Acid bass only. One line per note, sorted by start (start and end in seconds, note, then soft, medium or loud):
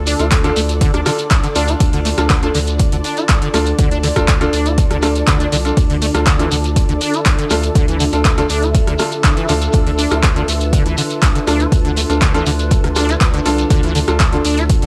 0.07 0.21 D4 medium
0.20 0.26 F4 medium
0.44 0.51 D3 medium
0.56 0.61 A3 medium
0.81 0.92 D3 medium
0.94 1.01 D4 medium
1.06 1.10 D3 loud
1.44 1.48 D3 medium
1.56 1.70 D4 medium
1.68 1.75 F4 medium
1.93 2.00 D3 medium
2.05 2.09 A3 medium
2.30 2.40 D3 medium
2.43 2.49 D4 medium
2.55 2.59 D3 loud
2.92 2.96 D3 medium
3.04 3.19 D4 medium
3.17 3.24 F4 medium
3.42 3.48 D3 medium
3.54 3.58 A3 medium
3.79 3.89 D3 medium
3.91 3.98 D4 medium
4.03 4.08 D3 loud
4.41 4.45 D3 medium
4.53 4.67 D4 medium
4.66 4.72 F4 medium
4.90 4.97 D3 medium
5.03 5.07 A3 medium
5.27 5.38 D3 medium
5.40 5.47 D4 medium
5.52 5.56 D3 loud
5.90 5.96 D3 medium
6.02 6.06 A3 medium
6.27 6.37 D3 medium
6.39 6.49 E3 medium
6.51 6.56 D3 loud
6.89 6.93 D3 medium
7.01 7.15 D4 medium
7.14 7.20 F4 medium
7.39 7.45 D3 medium
7.51 7.55 A3 medium
7.76 7.86 D3 medium
7.88 7.98 E3 medium
8.00 8.04 D3 loud
8.38 8.42 D3 medium
8.50 8.64 D4 medium
8.62 8.69 F4 medium
8.87 8.94 D3 medium
8.99 9.04 A3 medium
9.24 9.35 D3 medium
9.37 9.47 E3 medium
9.49 9.53 D3 loud
9.86 9.90 D3 medium
9.98 10.13 D4 medium
10.11 10.18 F4 medium
10.36 10.43 D3 medium
10.48 10.52 A3 medium
10.73 10.83 D3 medium
10.86 10.96 E3 medium
10.98 11.02 D3 loud
11.35 11.39 D3 medium
11.47 11.62 D4 medium
11.60 11.67 F4 medium
11.85 11.91 D3 medium
11.97 12.01 A3 medium
12.22 12.32 D3 medium
12.34 12.44 E3 medium
12.46 12.51 D3 loud
12.84 12.88 D3 medium
12.96 13.10 D4 medium
13.09 13.15 F4 medium
13.34 13.40 D3 medium
13.46 13.50 A3 medium
13.70 13.81 D3 medium
13.83 13.93 E3 medium
13.95 13.99 D3 loud
14.33 14.37 D3 medium
14.45 14.59 D4 medium
14.58 14.64 F4 medium
14.82 14.86 D3 medium